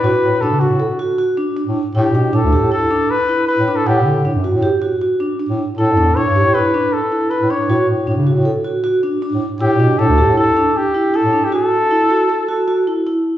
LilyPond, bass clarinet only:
\new Staff \with { instrumentName = "Bass clarinet" } { \clef bass \time 5/4 \key a \mixolydian \tempo 4 = 157 a,16 r16 a,8 a,16 cis8 a,8 r2 a,8 r16 | a,8 b,8 a,16 d,8 a,8 r2 a,8 r16 | a,8 d8 a,16 fis,8 a,8 r2 a,8 r16 | a,8 e,8 a,16 g,8 a,8 r2 a,8 r16 |
a,16 r16 a,8 a,16 cis8 a,8 r2 a,8 r16 | a,8 b,8 a,16 d,8 a,8 r2 a,8 r16 | r1 r4 | }